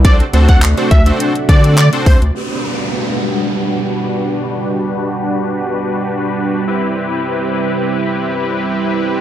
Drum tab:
HH |xxxxxxxxxxxxxxox|----------------|----------------|----------------|
CP |----x-------x---|----------------|----------------|----------------|
BD |o--o--o---o---o-|----------------|----------------|----------------|